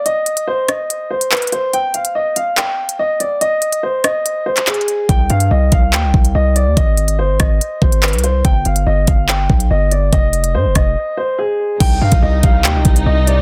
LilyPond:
<<
  \new Staff \with { instrumentName = "Grand piano" } { \time 4/4 \key c \minor \tempo 4 = 143 ees''4 c''8 ees''4 c''8 b'8 c''8 | g''8 f''8 ees''8 f''8 g''4 ees''8 d''8 | ees''4 c''8 ees''4 c''8 aes'4 | g''8 f''8 ees''8 f''8 g''4 ees''8 d''8 |
ees''4 c''8 ees''4 c''8 b'8 c''8 | g''8 f''8 ees''8 f''8 g''4 ees''8 d''8 | ees''4 c''8 ees''4 c''8 aes'4 | g''8 f''8 ees''8 f''8 g''4 ees''8 d''8 | }
  \new Staff \with { instrumentName = "String section" } { \clef bass \time 4/4 \key c \minor r1 | r1 | r1 | r1 |
r1 | r1 | r1 | <c g ees'>1 | }
  \new Staff \with { instrumentName = "808-style bass" } { \clef bass \time 4/4 \key c \minor r1 | r1 | r1 | c,8 g,8 c,8 c,8 ees,16 c,16 c,8 c,8. ees,16 |
aes,,4 g,,16 aes,,16 aes,,8 r8 aes,,8. c,8. | g,,8 g,,8 g,,8 g,,4 b,,8 g,,4 | f,,4 aes,16 f,,16 f,,8 r2 | c,8 g,16 c,16 c,8 c,8 ees,16 c,16 c,8 c,8. ees,16 | }
  \new DrumStaff \with { instrumentName = "Drums" } \drummode { \time 4/4 hh8 hh16 hh16 r8 <hh ss>8 hh8. hh16 <hc hh>32 hh32 hh32 hh32 hh8 | hh8 hh16 hh16 r8 hh8 <hc hh>8. hh16 r8 hh8 | hh8 hh16 hh16 r8 <hh ss>8 hh8. <hc hh>16 \tuplet 3/2 { <hc hh>16 hh16 hh16 hh16 r16 r16 } | <hh bd>8 hh16 hh16 r8 <hh bd>8 <hc hh>8 bd16 hh16 r8 hh8 |
<hh bd>8 hh16 hh16 r8 <hh bd ss>8 hh8 bd16 hh16 <hc hh>32 hh32 hh32 hh32 hh8 | <hh bd>8 hh16 hh16 r8 <hh bd>8 <hc hh>8 bd16 hh16 r8 hh8 | <hh bd>8 hh16 hh16 r8 <hh bd ss>8 r4 r4 | <cymc hh bd>8. <hh bd>16 r8 <hh bd>8 <hc hh>8 <hh bd>16 hh16 r8 hh8 | }
>>